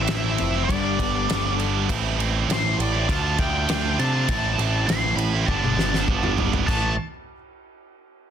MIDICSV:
0, 0, Header, 1, 7, 480
1, 0, Start_track
1, 0, Key_signature, 0, "minor"
1, 0, Tempo, 598802
1, 1513, Time_signature, 4, 2, 24, 8
1, 6655, End_track
2, 0, Start_track
2, 0, Title_t, "Lead electric guitar"
2, 0, Program_c, 0, 29
2, 20, Note_on_c, 0, 76, 84
2, 511, Note_off_c, 0, 76, 0
2, 515, Note_on_c, 0, 74, 70
2, 1222, Note_off_c, 0, 74, 0
2, 2024, Note_on_c, 0, 72, 88
2, 2256, Note_off_c, 0, 72, 0
2, 2261, Note_on_c, 0, 74, 77
2, 2483, Note_on_c, 0, 81, 84
2, 2494, Note_off_c, 0, 74, 0
2, 2719, Note_off_c, 0, 81, 0
2, 2722, Note_on_c, 0, 79, 95
2, 3198, Note_off_c, 0, 79, 0
2, 3201, Note_on_c, 0, 81, 93
2, 3901, Note_on_c, 0, 84, 108
2, 3939, Note_off_c, 0, 81, 0
2, 4129, Note_off_c, 0, 84, 0
2, 4133, Note_on_c, 0, 83, 92
2, 4379, Note_on_c, 0, 81, 86
2, 4391, Note_off_c, 0, 83, 0
2, 5074, Note_off_c, 0, 81, 0
2, 5346, Note_on_c, 0, 81, 75
2, 5572, Note_off_c, 0, 81, 0
2, 6655, End_track
3, 0, Start_track
3, 0, Title_t, "Distorted electric guitar"
3, 0, Program_c, 1, 30
3, 0, Note_on_c, 1, 64, 87
3, 73, Note_on_c, 1, 45, 85
3, 78, Note_on_c, 1, 57, 102
3, 80, Note_on_c, 1, 52, 84
3, 83, Note_off_c, 1, 64, 0
3, 86, Note_on_c, 1, 60, 97
3, 93, Note_on_c, 1, 64, 92
3, 188, Note_off_c, 1, 64, 0
3, 198, Note_off_c, 1, 60, 0
3, 198, Note_on_c, 1, 64, 76
3, 208, Note_on_c, 1, 60, 65
3, 210, Note_off_c, 1, 57, 0
3, 214, Note_on_c, 1, 57, 53
3, 304, Note_off_c, 1, 52, 0
3, 306, Note_off_c, 1, 60, 0
3, 314, Note_off_c, 1, 64, 0
3, 316, Note_off_c, 1, 57, 0
3, 432, Note_off_c, 1, 45, 0
3, 433, Note_on_c, 1, 64, 70
3, 445, Note_on_c, 1, 60, 63
3, 452, Note_on_c, 1, 57, 56
3, 538, Note_off_c, 1, 64, 0
3, 544, Note_off_c, 1, 60, 0
3, 546, Note_on_c, 1, 43, 90
3, 552, Note_off_c, 1, 57, 0
3, 555, Note_on_c, 1, 55, 77
3, 557, Note_on_c, 1, 50, 85
3, 564, Note_on_c, 1, 59, 96
3, 568, Note_on_c, 1, 62, 95
3, 660, Note_off_c, 1, 62, 0
3, 669, Note_on_c, 1, 62, 74
3, 675, Note_off_c, 1, 59, 0
3, 681, Note_off_c, 1, 55, 0
3, 684, Note_on_c, 1, 59, 65
3, 690, Note_on_c, 1, 55, 54
3, 909, Note_off_c, 1, 43, 0
3, 915, Note_off_c, 1, 50, 0
3, 1024, Note_off_c, 1, 55, 0
3, 1025, Note_on_c, 1, 43, 98
3, 1026, Note_on_c, 1, 50, 98
3, 1029, Note_off_c, 1, 59, 0
3, 1032, Note_off_c, 1, 62, 0
3, 1033, Note_on_c, 1, 55, 106
3, 1038, Note_on_c, 1, 59, 110
3, 1041, Note_on_c, 1, 62, 95
3, 1135, Note_off_c, 1, 62, 0
3, 1144, Note_on_c, 1, 62, 75
3, 1146, Note_off_c, 1, 59, 0
3, 1156, Note_on_c, 1, 59, 60
3, 1157, Note_off_c, 1, 55, 0
3, 1167, Note_on_c, 1, 55, 56
3, 1256, Note_off_c, 1, 50, 0
3, 1266, Note_on_c, 1, 50, 67
3, 1267, Note_off_c, 1, 55, 0
3, 1268, Note_off_c, 1, 59, 0
3, 1274, Note_off_c, 1, 62, 0
3, 1276, Note_on_c, 1, 55, 66
3, 1278, Note_on_c, 1, 59, 76
3, 1283, Note_on_c, 1, 62, 83
3, 1382, Note_off_c, 1, 62, 0
3, 1389, Note_off_c, 1, 43, 0
3, 1392, Note_on_c, 1, 62, 78
3, 1396, Note_off_c, 1, 59, 0
3, 1406, Note_on_c, 1, 59, 68
3, 1407, Note_off_c, 1, 55, 0
3, 1417, Note_on_c, 1, 55, 63
3, 1495, Note_off_c, 1, 50, 0
3, 1498, Note_off_c, 1, 62, 0
3, 1504, Note_on_c, 1, 45, 88
3, 1505, Note_off_c, 1, 59, 0
3, 1510, Note_off_c, 1, 55, 0
3, 1512, Note_on_c, 1, 52, 90
3, 1521, Note_on_c, 1, 57, 91
3, 1524, Note_on_c, 1, 60, 98
3, 1529, Note_on_c, 1, 64, 97
3, 1739, Note_off_c, 1, 52, 0
3, 1748, Note_on_c, 1, 52, 67
3, 1751, Note_off_c, 1, 60, 0
3, 1753, Note_off_c, 1, 57, 0
3, 1757, Note_on_c, 1, 57, 73
3, 1760, Note_on_c, 1, 60, 80
3, 1762, Note_off_c, 1, 64, 0
3, 1772, Note_on_c, 1, 64, 78
3, 1977, Note_off_c, 1, 45, 0
3, 1984, Note_off_c, 1, 52, 0
3, 1987, Note_on_c, 1, 45, 91
3, 1994, Note_off_c, 1, 60, 0
3, 1994, Note_on_c, 1, 52, 105
3, 1996, Note_off_c, 1, 57, 0
3, 1996, Note_off_c, 1, 64, 0
3, 1999, Note_on_c, 1, 57, 103
3, 2003, Note_on_c, 1, 60, 101
3, 2006, Note_on_c, 1, 64, 107
3, 2094, Note_off_c, 1, 64, 0
3, 2103, Note_on_c, 1, 64, 64
3, 2108, Note_off_c, 1, 60, 0
3, 2118, Note_on_c, 1, 60, 60
3, 2125, Note_off_c, 1, 57, 0
3, 2128, Note_on_c, 1, 57, 54
3, 2229, Note_off_c, 1, 60, 0
3, 2229, Note_off_c, 1, 64, 0
3, 2231, Note_off_c, 1, 52, 0
3, 2234, Note_off_c, 1, 57, 0
3, 2344, Note_on_c, 1, 64, 69
3, 2351, Note_off_c, 1, 45, 0
3, 2357, Note_on_c, 1, 60, 67
3, 2370, Note_on_c, 1, 57, 60
3, 2455, Note_off_c, 1, 64, 0
3, 2461, Note_off_c, 1, 60, 0
3, 2461, Note_on_c, 1, 50, 83
3, 2465, Note_off_c, 1, 57, 0
3, 2468, Note_on_c, 1, 57, 81
3, 2472, Note_on_c, 1, 62, 84
3, 2477, Note_on_c, 1, 65, 95
3, 2569, Note_off_c, 1, 65, 0
3, 2578, Note_off_c, 1, 62, 0
3, 2578, Note_on_c, 1, 65, 75
3, 2587, Note_on_c, 1, 62, 64
3, 2598, Note_off_c, 1, 57, 0
3, 2601, Note_on_c, 1, 57, 60
3, 2827, Note_off_c, 1, 50, 0
3, 2956, Note_off_c, 1, 57, 0
3, 2958, Note_on_c, 1, 50, 96
3, 2959, Note_on_c, 1, 57, 108
3, 2960, Note_off_c, 1, 62, 0
3, 2966, Note_off_c, 1, 65, 0
3, 2970, Note_on_c, 1, 62, 107
3, 2976, Note_on_c, 1, 65, 106
3, 3060, Note_off_c, 1, 65, 0
3, 3069, Note_on_c, 1, 65, 71
3, 3072, Note_off_c, 1, 62, 0
3, 3082, Note_on_c, 1, 62, 63
3, 3087, Note_off_c, 1, 57, 0
3, 3090, Note_on_c, 1, 57, 65
3, 3187, Note_off_c, 1, 50, 0
3, 3195, Note_off_c, 1, 62, 0
3, 3196, Note_on_c, 1, 50, 70
3, 3197, Note_off_c, 1, 57, 0
3, 3200, Note_on_c, 1, 57, 64
3, 3204, Note_off_c, 1, 65, 0
3, 3204, Note_on_c, 1, 62, 77
3, 3214, Note_on_c, 1, 65, 75
3, 3311, Note_off_c, 1, 65, 0
3, 3321, Note_on_c, 1, 65, 85
3, 3324, Note_off_c, 1, 62, 0
3, 3334, Note_on_c, 1, 62, 73
3, 3337, Note_off_c, 1, 57, 0
3, 3340, Note_on_c, 1, 57, 62
3, 3421, Note_off_c, 1, 50, 0
3, 3423, Note_off_c, 1, 65, 0
3, 3430, Note_off_c, 1, 62, 0
3, 3439, Note_on_c, 1, 45, 89
3, 3444, Note_off_c, 1, 57, 0
3, 3447, Note_on_c, 1, 57, 105
3, 3448, Note_on_c, 1, 52, 94
3, 3455, Note_on_c, 1, 60, 96
3, 3461, Note_on_c, 1, 64, 101
3, 3660, Note_off_c, 1, 52, 0
3, 3668, Note_off_c, 1, 57, 0
3, 3669, Note_on_c, 1, 52, 80
3, 3677, Note_off_c, 1, 60, 0
3, 3678, Note_on_c, 1, 57, 89
3, 3682, Note_off_c, 1, 64, 0
3, 3687, Note_on_c, 1, 60, 76
3, 3691, Note_on_c, 1, 64, 87
3, 3902, Note_off_c, 1, 45, 0
3, 3906, Note_off_c, 1, 52, 0
3, 3912, Note_on_c, 1, 45, 103
3, 3916, Note_on_c, 1, 52, 98
3, 3919, Note_off_c, 1, 57, 0
3, 3920, Note_off_c, 1, 60, 0
3, 3924, Note_off_c, 1, 64, 0
3, 3929, Note_on_c, 1, 57, 96
3, 3930, Note_on_c, 1, 60, 107
3, 3934, Note_on_c, 1, 64, 109
3, 4029, Note_off_c, 1, 64, 0
3, 4035, Note_off_c, 1, 60, 0
3, 4039, Note_on_c, 1, 64, 73
3, 4044, Note_off_c, 1, 57, 0
3, 4045, Note_on_c, 1, 60, 63
3, 4054, Note_on_c, 1, 57, 60
3, 4140, Note_off_c, 1, 52, 0
3, 4145, Note_off_c, 1, 57, 0
3, 4145, Note_off_c, 1, 60, 0
3, 4146, Note_off_c, 1, 64, 0
3, 4272, Note_on_c, 1, 64, 74
3, 4273, Note_off_c, 1, 45, 0
3, 4282, Note_on_c, 1, 60, 74
3, 4288, Note_on_c, 1, 57, 56
3, 4379, Note_off_c, 1, 64, 0
3, 4381, Note_on_c, 1, 43, 80
3, 4384, Note_off_c, 1, 60, 0
3, 4386, Note_off_c, 1, 57, 0
3, 4393, Note_on_c, 1, 50, 97
3, 4393, Note_on_c, 1, 55, 94
3, 4404, Note_on_c, 1, 59, 98
3, 4404, Note_on_c, 1, 62, 80
3, 4495, Note_off_c, 1, 62, 0
3, 4505, Note_on_c, 1, 62, 83
3, 4508, Note_off_c, 1, 59, 0
3, 4514, Note_off_c, 1, 55, 0
3, 4518, Note_on_c, 1, 59, 67
3, 4524, Note_on_c, 1, 55, 61
3, 4747, Note_off_c, 1, 43, 0
3, 4753, Note_off_c, 1, 50, 0
3, 4872, Note_on_c, 1, 43, 84
3, 4873, Note_off_c, 1, 55, 0
3, 4877, Note_on_c, 1, 50, 102
3, 4879, Note_off_c, 1, 59, 0
3, 4883, Note_on_c, 1, 55, 96
3, 4885, Note_off_c, 1, 62, 0
3, 4888, Note_on_c, 1, 59, 114
3, 4895, Note_on_c, 1, 62, 110
3, 4982, Note_off_c, 1, 62, 0
3, 4991, Note_on_c, 1, 62, 74
3, 4996, Note_off_c, 1, 59, 0
3, 5004, Note_off_c, 1, 55, 0
3, 5006, Note_on_c, 1, 59, 62
3, 5013, Note_on_c, 1, 55, 57
3, 5097, Note_off_c, 1, 50, 0
3, 5107, Note_on_c, 1, 50, 63
3, 5109, Note_off_c, 1, 55, 0
3, 5111, Note_off_c, 1, 59, 0
3, 5119, Note_off_c, 1, 62, 0
3, 5119, Note_on_c, 1, 55, 77
3, 5121, Note_on_c, 1, 59, 75
3, 5129, Note_on_c, 1, 62, 83
3, 5218, Note_off_c, 1, 62, 0
3, 5228, Note_off_c, 1, 59, 0
3, 5228, Note_on_c, 1, 62, 83
3, 5232, Note_off_c, 1, 43, 0
3, 5238, Note_on_c, 1, 59, 66
3, 5243, Note_off_c, 1, 55, 0
3, 5252, Note_on_c, 1, 55, 60
3, 5336, Note_off_c, 1, 50, 0
3, 5336, Note_off_c, 1, 62, 0
3, 5341, Note_off_c, 1, 59, 0
3, 5344, Note_on_c, 1, 45, 87
3, 5348, Note_off_c, 1, 55, 0
3, 5355, Note_on_c, 1, 52, 101
3, 5362, Note_on_c, 1, 57, 103
3, 5541, Note_off_c, 1, 45, 0
3, 5546, Note_off_c, 1, 52, 0
3, 5549, Note_off_c, 1, 57, 0
3, 6655, End_track
4, 0, Start_track
4, 0, Title_t, "Clean electric guitar"
4, 0, Program_c, 2, 27
4, 0, Note_on_c, 2, 45, 64
4, 0, Note_on_c, 2, 57, 61
4, 77, Note_on_c, 2, 52, 66
4, 306, Note_off_c, 2, 57, 0
4, 309, Note_on_c, 2, 60, 67
4, 551, Note_off_c, 2, 60, 0
4, 552, Note_off_c, 2, 45, 0
4, 555, Note_off_c, 2, 52, 0
4, 559, Note_on_c, 2, 55, 71
4, 787, Note_on_c, 2, 59, 62
4, 1027, Note_on_c, 2, 69, 83
4, 1270, Note_on_c, 2, 62, 66
4, 1510, Note_off_c, 2, 59, 0
4, 1511, Note_off_c, 2, 62, 0
4, 1511, Note_off_c, 2, 69, 0
4, 1517, Note_off_c, 2, 55, 0
4, 6655, End_track
5, 0, Start_track
5, 0, Title_t, "Picked electric bass"
5, 0, Program_c, 3, 34
5, 80, Note_on_c, 3, 33, 94
5, 293, Note_off_c, 3, 33, 0
5, 321, Note_on_c, 3, 29, 82
5, 534, Note_off_c, 3, 29, 0
5, 549, Note_on_c, 3, 31, 95
5, 768, Note_off_c, 3, 31, 0
5, 793, Note_on_c, 3, 31, 95
5, 1010, Note_off_c, 3, 31, 0
5, 1047, Note_on_c, 3, 31, 89
5, 1488, Note_off_c, 3, 31, 0
5, 1519, Note_on_c, 3, 33, 99
5, 1964, Note_off_c, 3, 33, 0
5, 1989, Note_on_c, 3, 33, 90
5, 2208, Note_off_c, 3, 33, 0
5, 2232, Note_on_c, 3, 33, 91
5, 2450, Note_off_c, 3, 33, 0
5, 2475, Note_on_c, 3, 38, 91
5, 2692, Note_off_c, 3, 38, 0
5, 2713, Note_on_c, 3, 38, 100
5, 2931, Note_off_c, 3, 38, 0
5, 2960, Note_on_c, 3, 38, 110
5, 3174, Note_off_c, 3, 38, 0
5, 3198, Note_on_c, 3, 48, 96
5, 3413, Note_off_c, 3, 48, 0
5, 3434, Note_on_c, 3, 33, 97
5, 3651, Note_off_c, 3, 33, 0
5, 3673, Note_on_c, 3, 33, 94
5, 3891, Note_off_c, 3, 33, 0
5, 3911, Note_on_c, 3, 33, 99
5, 4129, Note_off_c, 3, 33, 0
5, 4134, Note_on_c, 3, 33, 92
5, 4360, Note_off_c, 3, 33, 0
5, 4390, Note_on_c, 3, 31, 92
5, 4609, Note_off_c, 3, 31, 0
5, 4616, Note_on_c, 3, 31, 101
5, 4841, Note_off_c, 3, 31, 0
5, 4869, Note_on_c, 3, 31, 101
5, 5319, Note_off_c, 3, 31, 0
5, 5358, Note_on_c, 3, 33, 88
5, 5579, Note_off_c, 3, 33, 0
5, 6655, End_track
6, 0, Start_track
6, 0, Title_t, "Muted distorted electric guitar strokes"
6, 314, Note_on_c, 9, 29, 46
6, 394, Note_off_c, 9, 29, 0
6, 2238, Note_on_c, 9, 29, 50
6, 2318, Note_off_c, 9, 29, 0
6, 4150, Note_on_c, 9, 29, 46
6, 4230, Note_off_c, 9, 29, 0
6, 6655, End_track
7, 0, Start_track
7, 0, Title_t, "Drums"
7, 61, Note_on_c, 9, 51, 92
7, 69, Note_on_c, 9, 38, 99
7, 141, Note_off_c, 9, 51, 0
7, 149, Note_off_c, 9, 38, 0
7, 307, Note_on_c, 9, 51, 66
7, 387, Note_off_c, 9, 51, 0
7, 555, Note_on_c, 9, 36, 77
7, 563, Note_on_c, 9, 51, 89
7, 635, Note_off_c, 9, 36, 0
7, 643, Note_off_c, 9, 51, 0
7, 796, Note_on_c, 9, 36, 80
7, 799, Note_on_c, 9, 51, 71
7, 876, Note_off_c, 9, 36, 0
7, 879, Note_off_c, 9, 51, 0
7, 1039, Note_on_c, 9, 51, 87
7, 1047, Note_on_c, 9, 38, 119
7, 1119, Note_off_c, 9, 51, 0
7, 1127, Note_off_c, 9, 38, 0
7, 1279, Note_on_c, 9, 51, 61
7, 1360, Note_off_c, 9, 51, 0
7, 1518, Note_on_c, 9, 36, 98
7, 1520, Note_on_c, 9, 51, 92
7, 1598, Note_off_c, 9, 36, 0
7, 1600, Note_off_c, 9, 51, 0
7, 1765, Note_on_c, 9, 51, 65
7, 1845, Note_off_c, 9, 51, 0
7, 2003, Note_on_c, 9, 51, 95
7, 2011, Note_on_c, 9, 38, 110
7, 2084, Note_off_c, 9, 51, 0
7, 2092, Note_off_c, 9, 38, 0
7, 2245, Note_on_c, 9, 51, 66
7, 2326, Note_off_c, 9, 51, 0
7, 2476, Note_on_c, 9, 36, 82
7, 2480, Note_on_c, 9, 51, 77
7, 2557, Note_off_c, 9, 36, 0
7, 2560, Note_off_c, 9, 51, 0
7, 2713, Note_on_c, 9, 51, 64
7, 2715, Note_on_c, 9, 36, 86
7, 2793, Note_off_c, 9, 51, 0
7, 2796, Note_off_c, 9, 36, 0
7, 2956, Note_on_c, 9, 51, 91
7, 2964, Note_on_c, 9, 38, 113
7, 3036, Note_off_c, 9, 51, 0
7, 3044, Note_off_c, 9, 38, 0
7, 3202, Note_on_c, 9, 51, 59
7, 3282, Note_off_c, 9, 51, 0
7, 3435, Note_on_c, 9, 51, 84
7, 3437, Note_on_c, 9, 36, 102
7, 3515, Note_off_c, 9, 51, 0
7, 3517, Note_off_c, 9, 36, 0
7, 3680, Note_on_c, 9, 51, 67
7, 3760, Note_off_c, 9, 51, 0
7, 3918, Note_on_c, 9, 51, 88
7, 3926, Note_on_c, 9, 38, 111
7, 3999, Note_off_c, 9, 51, 0
7, 4007, Note_off_c, 9, 38, 0
7, 4156, Note_on_c, 9, 51, 77
7, 4236, Note_off_c, 9, 51, 0
7, 4395, Note_on_c, 9, 36, 83
7, 4475, Note_off_c, 9, 36, 0
7, 4523, Note_on_c, 9, 48, 55
7, 4603, Note_off_c, 9, 48, 0
7, 4641, Note_on_c, 9, 38, 73
7, 4721, Note_off_c, 9, 38, 0
7, 4763, Note_on_c, 9, 38, 76
7, 4843, Note_off_c, 9, 38, 0
7, 4874, Note_on_c, 9, 36, 85
7, 4954, Note_off_c, 9, 36, 0
7, 4996, Note_on_c, 9, 45, 80
7, 5076, Note_off_c, 9, 45, 0
7, 5116, Note_on_c, 9, 43, 88
7, 5196, Note_off_c, 9, 43, 0
7, 5238, Note_on_c, 9, 43, 95
7, 5318, Note_off_c, 9, 43, 0
7, 5356, Note_on_c, 9, 36, 103
7, 5359, Note_on_c, 9, 49, 84
7, 5437, Note_off_c, 9, 36, 0
7, 5439, Note_off_c, 9, 49, 0
7, 6655, End_track
0, 0, End_of_file